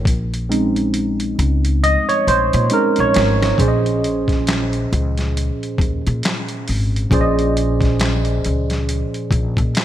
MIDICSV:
0, 0, Header, 1, 4, 480
1, 0, Start_track
1, 0, Key_signature, -5, "minor"
1, 0, Tempo, 882353
1, 26, Time_signature, 4, 2, 24, 8
1, 5357, End_track
2, 0, Start_track
2, 0, Title_t, "Tine electric piano"
2, 0, Program_c, 0, 4
2, 0, Control_c, 0, 64, 127
2, 33, Control_c, 0, 64, 0
2, 143, Control_c, 0, 64, 127
2, 268, Note_on_c, 0, 60, 52
2, 269, Note_on_c, 0, 56, 50
2, 273, Note_on_c, 0, 61, 46
2, 276, Note_on_c, 0, 63, 59
2, 965, Note_off_c, 0, 60, 0
2, 966, Note_off_c, 0, 56, 0
2, 968, Note_off_c, 0, 61, 0
2, 969, Note_off_c, 0, 63, 0
2, 998, Note_on_c, 0, 75, 116
2, 1125, Note_off_c, 0, 75, 0
2, 1135, Note_on_c, 0, 73, 99
2, 1232, Note_off_c, 0, 73, 0
2, 1242, Note_on_c, 0, 72, 99
2, 1473, Note_on_c, 0, 56, 48
2, 1473, Note_on_c, 0, 60, 43
2, 1477, Note_on_c, 0, 63, 55
2, 1478, Note_on_c, 0, 61, 46
2, 1481, Note_off_c, 0, 72, 0
2, 1487, Note_on_c, 0, 70, 90
2, 1546, Note_off_c, 0, 70, 0
2, 1634, Note_on_c, 0, 73, 89
2, 1687, Note_off_c, 0, 56, 0
2, 1688, Note_off_c, 0, 60, 0
2, 1690, Note_off_c, 0, 61, 0
2, 1690, Note_off_c, 0, 63, 0
2, 1937, Note_off_c, 0, 73, 0
2, 1939, Note_on_c, 0, 46, 65
2, 1947, Note_on_c, 0, 53, 59
2, 1950, Note_on_c, 0, 61, 63
2, 1952, Control_c, 0, 64, 0
2, 1956, Note_on_c, 0, 68, 56
2, 1961, Note_on_c, 0, 72, 63
2, 1969, Note_on_c, 0, 74, 57
2, 1999, Note_off_c, 0, 74, 0
2, 2001, Note_on_c, 0, 75, 68
2, 2052, Control_c, 0, 64, 127
2, 3840, Note_off_c, 0, 46, 0
2, 3845, Note_off_c, 0, 53, 0
2, 3846, Note_off_c, 0, 61, 0
2, 3849, Note_off_c, 0, 68, 0
2, 3851, Note_off_c, 0, 72, 0
2, 3860, Note_on_c, 0, 46, 70
2, 3865, Note_on_c, 0, 53, 70
2, 3867, Note_on_c, 0, 61, 68
2, 3872, Note_off_c, 0, 75, 0
2, 3875, Note_on_c, 0, 68, 69
2, 3880, Note_on_c, 0, 72, 74
2, 3883, Note_on_c, 0, 74, 69
2, 3916, Note_off_c, 0, 74, 0
2, 3922, Note_on_c, 0, 75, 83
2, 5357, Note_off_c, 0, 46, 0
2, 5357, Note_off_c, 0, 53, 0
2, 5357, Note_off_c, 0, 61, 0
2, 5357, Note_off_c, 0, 68, 0
2, 5357, Note_off_c, 0, 72, 0
2, 5357, Note_off_c, 0, 75, 0
2, 5357, End_track
3, 0, Start_track
3, 0, Title_t, "Upright bass"
3, 0, Program_c, 1, 32
3, 34, Note_on_c, 1, 34, 96
3, 728, Note_off_c, 1, 34, 0
3, 755, Note_on_c, 1, 37, 96
3, 1060, Note_off_c, 1, 37, 0
3, 1237, Note_on_c, 1, 34, 92
3, 1347, Note_off_c, 1, 34, 0
3, 1381, Note_on_c, 1, 46, 107
3, 1455, Note_off_c, 1, 46, 0
3, 1625, Note_on_c, 1, 34, 93
3, 1697, Note_off_c, 1, 34, 0
3, 1720, Note_on_c, 1, 32, 98
3, 1908, Note_off_c, 1, 32, 0
3, 1951, Note_on_c, 1, 34, 89
3, 2647, Note_off_c, 1, 34, 0
3, 2679, Note_on_c, 1, 37, 90
3, 2983, Note_off_c, 1, 37, 0
3, 3150, Note_on_c, 1, 39, 83
3, 3263, Note_off_c, 1, 39, 0
3, 3302, Note_on_c, 1, 46, 97
3, 3375, Note_off_c, 1, 46, 0
3, 3639, Note_on_c, 1, 32, 84
3, 3828, Note_off_c, 1, 32, 0
3, 3871, Note_on_c, 1, 34, 101
3, 4566, Note_off_c, 1, 34, 0
3, 4601, Note_on_c, 1, 37, 78
3, 4904, Note_off_c, 1, 37, 0
3, 5067, Note_on_c, 1, 34, 88
3, 5182, Note_off_c, 1, 34, 0
3, 5212, Note_on_c, 1, 46, 89
3, 5289, Note_off_c, 1, 46, 0
3, 5357, End_track
4, 0, Start_track
4, 0, Title_t, "Drums"
4, 29, Note_on_c, 9, 36, 97
4, 39, Note_on_c, 9, 42, 91
4, 83, Note_off_c, 9, 36, 0
4, 93, Note_off_c, 9, 42, 0
4, 183, Note_on_c, 9, 42, 48
4, 237, Note_off_c, 9, 42, 0
4, 281, Note_on_c, 9, 42, 80
4, 336, Note_off_c, 9, 42, 0
4, 415, Note_on_c, 9, 42, 45
4, 470, Note_off_c, 9, 42, 0
4, 510, Note_on_c, 9, 42, 75
4, 565, Note_off_c, 9, 42, 0
4, 652, Note_on_c, 9, 42, 50
4, 706, Note_off_c, 9, 42, 0
4, 757, Note_on_c, 9, 42, 67
4, 811, Note_off_c, 9, 42, 0
4, 896, Note_on_c, 9, 42, 49
4, 950, Note_off_c, 9, 42, 0
4, 1000, Note_on_c, 9, 42, 66
4, 1054, Note_off_c, 9, 42, 0
4, 1139, Note_on_c, 9, 42, 37
4, 1194, Note_off_c, 9, 42, 0
4, 1241, Note_on_c, 9, 42, 73
4, 1295, Note_off_c, 9, 42, 0
4, 1378, Note_on_c, 9, 42, 56
4, 1432, Note_off_c, 9, 42, 0
4, 1467, Note_on_c, 9, 42, 75
4, 1522, Note_off_c, 9, 42, 0
4, 1610, Note_on_c, 9, 42, 52
4, 1664, Note_off_c, 9, 42, 0
4, 1710, Note_on_c, 9, 42, 68
4, 1721, Note_on_c, 9, 38, 114
4, 1765, Note_off_c, 9, 42, 0
4, 1775, Note_off_c, 9, 38, 0
4, 1864, Note_on_c, 9, 38, 90
4, 1867, Note_on_c, 9, 42, 52
4, 1918, Note_off_c, 9, 38, 0
4, 1922, Note_off_c, 9, 42, 0
4, 1947, Note_on_c, 9, 36, 89
4, 1956, Note_on_c, 9, 42, 86
4, 2002, Note_off_c, 9, 36, 0
4, 2011, Note_off_c, 9, 42, 0
4, 2100, Note_on_c, 9, 42, 42
4, 2155, Note_off_c, 9, 42, 0
4, 2199, Note_on_c, 9, 42, 68
4, 2254, Note_off_c, 9, 42, 0
4, 2328, Note_on_c, 9, 36, 81
4, 2335, Note_on_c, 9, 42, 38
4, 2343, Note_on_c, 9, 38, 34
4, 2382, Note_off_c, 9, 36, 0
4, 2389, Note_off_c, 9, 42, 0
4, 2397, Note_off_c, 9, 38, 0
4, 2432, Note_on_c, 9, 42, 77
4, 2440, Note_on_c, 9, 38, 101
4, 2443, Note_on_c, 9, 39, 78
4, 2487, Note_off_c, 9, 42, 0
4, 2494, Note_off_c, 9, 38, 0
4, 2497, Note_off_c, 9, 39, 0
4, 2573, Note_on_c, 9, 42, 43
4, 2627, Note_off_c, 9, 42, 0
4, 2680, Note_on_c, 9, 42, 53
4, 2735, Note_off_c, 9, 42, 0
4, 2815, Note_on_c, 9, 42, 39
4, 2822, Note_on_c, 9, 38, 35
4, 2870, Note_off_c, 9, 42, 0
4, 2877, Note_off_c, 9, 38, 0
4, 2922, Note_on_c, 9, 42, 66
4, 2976, Note_off_c, 9, 42, 0
4, 3063, Note_on_c, 9, 42, 33
4, 3117, Note_off_c, 9, 42, 0
4, 3146, Note_on_c, 9, 36, 87
4, 3163, Note_on_c, 9, 42, 61
4, 3201, Note_off_c, 9, 36, 0
4, 3217, Note_off_c, 9, 42, 0
4, 3300, Note_on_c, 9, 42, 45
4, 3354, Note_off_c, 9, 42, 0
4, 3390, Note_on_c, 9, 42, 69
4, 3403, Note_on_c, 9, 38, 98
4, 3406, Note_on_c, 9, 39, 71
4, 3445, Note_off_c, 9, 42, 0
4, 3457, Note_off_c, 9, 38, 0
4, 3460, Note_off_c, 9, 39, 0
4, 3528, Note_on_c, 9, 42, 46
4, 3582, Note_off_c, 9, 42, 0
4, 3632, Note_on_c, 9, 46, 48
4, 3686, Note_off_c, 9, 46, 0
4, 3788, Note_on_c, 9, 42, 48
4, 3843, Note_off_c, 9, 42, 0
4, 3867, Note_on_c, 9, 36, 96
4, 3877, Note_on_c, 9, 42, 78
4, 3921, Note_off_c, 9, 36, 0
4, 3931, Note_off_c, 9, 42, 0
4, 4018, Note_on_c, 9, 42, 47
4, 4073, Note_off_c, 9, 42, 0
4, 4117, Note_on_c, 9, 42, 72
4, 4172, Note_off_c, 9, 42, 0
4, 4246, Note_on_c, 9, 36, 89
4, 4252, Note_on_c, 9, 42, 44
4, 4260, Note_on_c, 9, 38, 35
4, 4301, Note_off_c, 9, 36, 0
4, 4307, Note_off_c, 9, 42, 0
4, 4315, Note_off_c, 9, 38, 0
4, 4349, Note_on_c, 9, 42, 71
4, 4357, Note_on_c, 9, 38, 104
4, 4360, Note_on_c, 9, 39, 79
4, 4404, Note_off_c, 9, 42, 0
4, 4411, Note_off_c, 9, 38, 0
4, 4414, Note_off_c, 9, 39, 0
4, 4487, Note_on_c, 9, 42, 44
4, 4542, Note_off_c, 9, 42, 0
4, 4594, Note_on_c, 9, 42, 56
4, 4648, Note_off_c, 9, 42, 0
4, 4732, Note_on_c, 9, 42, 43
4, 4739, Note_on_c, 9, 38, 34
4, 4787, Note_off_c, 9, 42, 0
4, 4794, Note_off_c, 9, 38, 0
4, 4835, Note_on_c, 9, 42, 68
4, 4889, Note_off_c, 9, 42, 0
4, 4974, Note_on_c, 9, 42, 34
4, 5028, Note_off_c, 9, 42, 0
4, 5063, Note_on_c, 9, 36, 88
4, 5072, Note_on_c, 9, 42, 65
4, 5117, Note_off_c, 9, 36, 0
4, 5126, Note_off_c, 9, 42, 0
4, 5205, Note_on_c, 9, 36, 82
4, 5212, Note_on_c, 9, 42, 47
4, 5260, Note_off_c, 9, 36, 0
4, 5267, Note_off_c, 9, 42, 0
4, 5303, Note_on_c, 9, 42, 70
4, 5316, Note_on_c, 9, 38, 104
4, 5319, Note_on_c, 9, 39, 80
4, 5357, Note_off_c, 9, 38, 0
4, 5357, Note_off_c, 9, 39, 0
4, 5357, Note_off_c, 9, 42, 0
4, 5357, End_track
0, 0, End_of_file